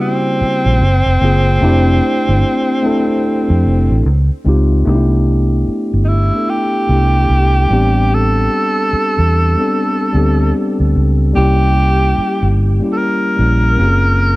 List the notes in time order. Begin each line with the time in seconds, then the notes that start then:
Already playing: C#3 G3 A#3 C#4 E4 F#4 G4
0.01 C4
0.41 muted fingered electric bass stroke
0.66 A#1
0.81 F#1
1.06 F1
1.21 F#1 C#3 A#3 C4 F4 G#4
1.61 F1 A3 C4 D4 E4 G4
2.29 G1
2.82 A3 C4 D4 E4 A4
3.50 F2
3.66 F1
3.90 A1
4.06 C#2
4.45 C#2 G#3 C4 D#4 F4
4.49 G4
4.85 C2 A3 B3 D4 D#4 G4
4.94 E4
5.68 muted fingered electric bass stroke
5.94 G1
6.05 D#4 E4
6.33 A3 B3 D4 E4
6.37 A4
6.50 G4
6.89 C2 A3 B3 D4 E4
6.93 G4
7.30 C2
7.70 A1 G3 B3 C4 D4 G4
8.14 A4
8.93 muted fingered electric bass stroke
9.19 E2
9.57 G3 B3 C4 D4 A4
10.13 D2 G3 B3 C4 D4
10.17 G4
10.80 D2
10.96 C#2
11.34 C2 G3 A#3 C#4 E4 G4
11.38 G4
12.18 muted fingered electric bass stroke
12.42 G1
12.80 G3 A#3 C#4 E4
12.84 G4
12.92 A4
12.98 A#4
13.36 A#1 G3 A#3 C#4 E4
13.40 A#4
13.77 F#1 A#3 C4 C#4 F4 G4
13.87 G#4